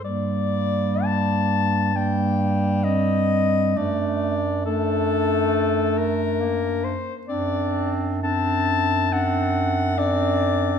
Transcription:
<<
  \new Staff \with { instrumentName = "Soprano saxophone" } { \time 4/4 \key g \minor \tempo 4 = 67 d''4 a''4 g''4 ees''4 | d''4 a'4. bes'4 c''8 | d''8 r8 a''4 fis''4 d''4 | }
  \new Staff \with { instrumentName = "Clarinet" } { \time 4/4 \key g \minor bes2 bes4 c'4 | d'4 d'2~ d'8 r8 | d'4 d'4 d'4 d'4 | }
  \new Staff \with { instrumentName = "Clarinet" } { \time 4/4 \key g \minor g2 g2 | a4 a2 bes8 r8 | c'4 c'4 c'4 c'4 | }
  \new Staff \with { instrumentName = "Bass clarinet" } { \clef bass \time 4/4 \key g \minor g,1 | fis,2.~ fis,8 r8 | fis,1 | }
>>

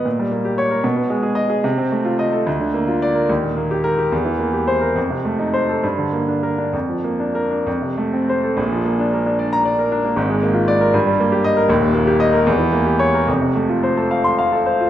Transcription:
<<
  \new Staff \with { instrumentName = "Grand piano" } { \time 6/8 \key gis \dorian \tempo 4. = 73 r4 des''8 r4 dis''8 | \key bes \major r4 ees''8 r4 d''8 | r4 bes'8 r4 c''8 | r4 c''8 r4 bes'8 |
r4 bes'8 r4 c''8 | r4. r16 bes''8 r8. | r4 d''8 r4 ees''8 | r4 ees''8 r4 cis''8 |
r4. r16 c'''8 r8. | }
  \new Staff \with { instrumentName = "Grand piano" } { \time 6/8 \key gis \dorian bes,16 g16 bes16 g'8 bes'16 b,16 b16 gis16 gis'8 gis'16 | \key bes \major c16 c'16 a16 f'8 a'16 d,16 d16 bes16 f'8 bes'16 | ees,16 bes,16 bes16 g'8 g'16 e,16 e16 bes16 g'8 bes'16 | f,16 c16 a16 ees'8 a'16 g,16 d16 bes16 d'8 d'16 |
f,16 f16 bes16 d'8 d'16 f,16 c16 a16 c'8 a'16 | <bes,, bes,>16 f16 bes16 d'16 bes'16 d'16 d''8 d''16 bes'16 d'16 bes16 | <aes,, aes,>16 aes16 bes16 f'8 bes'16 g,16 g16 bes16 g'8 bes'16 | <ees,, ees,>16 bes,16 bes16 g'8 bes'16 e,16 e16 bes16 g'8 bes'16 |
<f,, f,>16 c16 a16 f'16 c''16 a'16 f''8 f''16 a'16 c''16 f'16 | }
>>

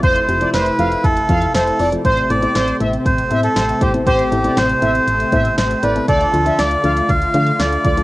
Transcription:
<<
  \new Staff \with { instrumentName = "Analog polysynth" } { \time 4/4 \key a \minor \tempo 4 = 119 c''8 r16 d''16 c''8 f''16 r8. f''8 c''16 r16 d''16 r16 | c''8 r16 d''16 c''8 e''16 r8. e''8 c''16 r16 c''16 r16 | c''8 r16 d''16 c''8 e''16 r8. e''8 c''16 r16 d''16 r16 | d''8 r16 e''16 d''8 f''16 r8. f''8 d''16 r16 d''16 r16 | }
  \new Staff \with { instrumentName = "Melodica" } { \time 4/4 \key a \minor c''4 b'4 a'4 a'8. r16 | c''8 d''4 r8 c''8. a'8. g'8 | g'4 c''2 c''8 b'8 | a'4 d''4 f''4 d''4 | }
  \new Staff \with { instrumentName = "Synth pluck" } { \time 4/4 \key a \minor r8 <f a c' f' g'>16 <f a c' f' a'>16 r8 <f a c' f' a'>16 r8. <f a c' f' a'>16 r8. <f a c' f' a'>16 <f a c' f' a'>16 | r8 <a b c' e' a'>16 <a b c' e' a'>16 r8 <a b c' e' a'>16 r8. <a b c' e' a'>16 r8. <a b c' e' a'>16 <a b c' e' a'>16 | r8 <a b c' e' g'>16 <a b c' e' a'>16 r8 <a b c' e' a'>16 r8. <a b c' e' c''>16 r8. <a b c' e' a'>16 <a b c' e' a'>16 | r8 <f a d' f' a'>16 <f a d' f' a'>16 r8 <f a d' f' a'>16 r8. <f a d' f' a'>16 r8. <f a d' f' a'>16 <f a d' f' a'>16 | }
  \new Staff \with { instrumentName = "Analog synth pad" } { \time 4/4 \key a \minor << { <c e'>1 | <c c'>1~ | <c c'>1 | <d f'>1 | } \\ { a1~ | a1~ | a1~ | a1 | } >> }
  \new Staff \with { instrumentName = "FM bass" } { \clef bass \time 4/4 \key a \minor f,,8 f,,8 f,,8 f,,8 f,,8 f,8 f,,8 f,,8 | a,,8 a,,8 a,,8 a,,8 a,,8 a,8 a,,8 a,,8 | a,,8 a,,8 a,,8 a,,8 a,,8 a,8 a,,8 a,,8 | d,8 d,8 d,8 d,8 d,8 d8 d,8 d,8 | }
  \new DrumStaff \with { instrumentName = "Drums" } \drummode { \time 4/4 <hh bd>16 hh16 hh16 hh16 <hh sn>16 hh16 hh16 hh16 <hh bd>16 hh16 <hh bd>16 hh16 <hh sn>16 hh16 hho16 hh16 | <hh bd>16 hh16 hh16 hh16 <hh sn>16 hh16 hh16 hh16 <hh bd>16 hh16 hh16 hh16 <hh sn>16 hh16 <hh bd>16 hh16 | <hh bd>16 hh16 hh16 hh16 <hh sn>16 hh16 hh16 hh16 hh16 hh16 <hh bd>16 hh16 <hh sn>16 hh16 hh16 hh16 | <hh bd>16 hh16 hh16 hh16 <hh sn>16 hh16 hh16 hh16 <hh bd>16 hh16 hh16 hh16 <hh sn>16 hh16 <hh bd>16 hh16 | }
>>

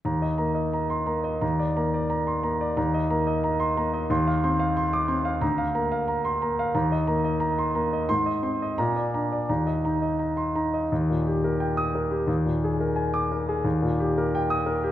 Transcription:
<<
  \new Staff \with { instrumentName = "Grand piano" } { \time 2/4 \key ees \major \tempo 4 = 88 << { r4 r16 c'''16 r8 | r4 r16 c'''16 r8 | r4 r16 c'''16 r8 | r4 r16 d'''16 r8 |
r4 r16 c'''16 r8 | r4 r16 c'''16 r8 | c'''8 r8 bes''8 r8 | r4 r16 c'''16 r8 |
r4 r16 ees'''8 r16 | r4 r16 d'''8 r16 | r4 r16 ees'''8 r16 | } \\ { bes''16 ees''16 bes''16 ees''16 bes''8 bes''16 ees''16 | bes''16 d''16 bes''16 d''16 bes''8 bes''16 d''16 | bes''16 ees''16 bes''16 ees''16 bes''8 bes''16 ees''16 | c'''16 f''16 c'''16 f''16 c'''8 c'''16 f''16 |
bes''16 f''16 bes''16 f''16 bes''8 bes''16 f''16 | bes''16 ees''16 bes''16 ees''16 bes''8 bes''16 ees''16 | r16 ees''16 c'''16 ees''16 r16 d''16 bes''16 d''16 | bes''16 ees''16 bes''16 ees''16 bes''8 bes''16 ees''16 |
r2 | r2 | r2 | } >> }
  \new Staff \with { instrumentName = "Grand piano" } { \time 2/4 \key ees \major ees,8 bes8 r8 bes8 | ees,8 bes8 r8 bes8 | ees,8 bes8 r8 bes8 | ees,8 c'8 r8 c'8 |
d,8 bes8 r8 bes8 | ees,8 bes8 r8 bes8 | aes,8 c'8 bes,8 d'8 | ees,8 ees'8 r8 ees'8 |
ees,16 bes,16 g'16 bes'16 g''8 bes'16 g'16 | ees,16 bes,16 aes'16 bes'16 aes''8 bes'16 aes'16 | ees,16 bes,16 g'16 bes'16 g''8 bes'16 g'16 | }
>>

